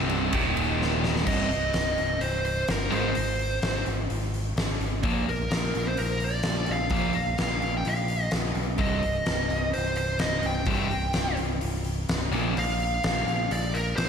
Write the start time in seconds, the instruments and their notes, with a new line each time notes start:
Already playing: picked electric bass C1, distorted electric guitar C2 G2 C3
0.09 ride
0.32 picked electric bass D#1, distorted electric guitar D#2 A#2 D#3, kick, ride
0.57 ride
0.82 snare
1.04 snare
1.16 snare
1.25 picked electric bass C1, distorted electric guitar C2 G2, overdriven electric guitar C3, lead electric guitar D#5, kick, crash
1.30 distorted electric guitar C3
1.51 open hi-hat
1.73 picked electric bass C1, snare, open hi-hat
1.98 picked electric bass C1, open hi-hat
2.21 picked electric bass C1, lead electric guitar C5, open hi-hat
2.45 lead electric guitar C5, open hi-hat
2.68 picked electric bass G1, lead electric guitar A#4, snare, open hi-hat
2.90 picked electric bass G#1, distorted electric guitar G#2 D#3 G#3, open hi-hat
2.95 lead electric guitar C5
3.15 picked electric bass G#1, open hi-hat
3.39 open hi-hat
3.62 picked electric bass G#1, snare, open hi-hat
3.86 picked electric bass G#1, open hi-hat
4.10 picked electric bass G#1, open hi-hat
4.34 open hi-hat
4.56 picked electric bass G#1, snare, open hi-hat
4.79 picked electric bass G#1, open hi-hat
5.03 picked electric bass A#1, distorted electric guitar A#2 F3 A#3, kick, open hi-hat
5.29 lead electric guitar A#4, open hi-hat
5.51 picked electric bass A#1, snare, open hi-hat
5.75 picked electric bass A#1, open hi-hat
5.88 lead electric guitar C5
5.97 picked electric bass A#1, lead electric guitar A#4, open hi-hat
6.20 lead electric guitar D5, open hi-hat
6.43 picked electric bass A#1, snare, open hi-hat
6.66 picked electric bass A#1, open hi-hat
6.72 lead electric guitar F5
6.90 picked electric bass A#1, distorted electric guitar A#2 F3 A#3, kick, open hi-hat
7.13 open hi-hat
7.38 picked electric bass A#1, lead electric guitar F5, snare, open hi-hat
7.62 picked electric bass A#1, open hi-hat
7.77 lead electric guitar G5
7.85 picked electric bass A#1, lead electric guitar F5, open hi-hat
8.08 open hi-hat
8.31 picked electric bass A#1, snare, open hi-hat
8.55 picked electric bass B1, open hi-hat
8.78 picked electric bass C1, distorted electric guitar C2 G2 C3, lead electric guitar D#5, kick, open hi-hat
9.03 open hi-hat
9.26 picked electric bass C1, snare, open hi-hat
9.50 picked electric bass C1, open hi-hat
9.73 picked electric bass C1, lead electric guitar C5, open hi-hat
9.96 lead electric guitar C5, open hi-hat
10.19 picked electric bass C1, lead electric guitar D#5, snare, open hi-hat
10.43 picked electric bass C1, lead electric guitar G5, open hi-hat
10.66 picked electric bass C1, distorted electric guitar C2 G2 C3, kick, open hi-hat
10.91 open hi-hat
11.13 picked electric bass C1, snare, open hi-hat
11.37 picked electric bass C1, open hi-hat
11.61 picked electric bass C1, open hi-hat
11.84 open hi-hat
12.09 picked electric bass C1, snare, open hi-hat
12.32 picked electric bass A#1, distorted electric guitar A#2 F3 A#3, open hi-hat
12.57 picked electric bass A#1, lead electric guitar F5, open hi-hat
12.80 open hi-hat
13.04 picked electric bass A#1, snare, open hi-hat
13.26 picked electric bass A#1, open hi-hat
13.51 picked electric bass A#1, lead electric guitar D5, open hi-hat
13.74 lead electric guitar A#4, open hi-hat
13.96 picked electric bass A#1, lead electric guitar C5, snare, open hi-hat